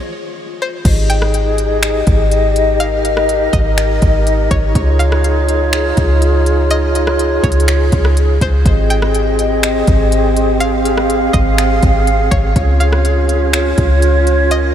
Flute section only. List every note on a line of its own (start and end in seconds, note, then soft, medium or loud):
0.85 8.36 D#4 medium
0.85 4.71 G4 medium
0.85 2.78 G#4 medium
0.85 4.71 D#5 medium
2.80 4.73 A#4 medium
4.75 8.38 F4 medium
4.75 14.20 G#4 medium
4.75 6.69 C#5 medium
6.71 8.38 C#5 medium
8.66 12.52 C4 medium
8.66 12.52 G4 medium
8.66 10.59 D#5 medium
10.61 12.54 F5 medium
12.56 14.74 C#4 medium
12.56 14.74 F4 medium
12.56 14.74 C#5 medium
14.51 14.74 A#4 medium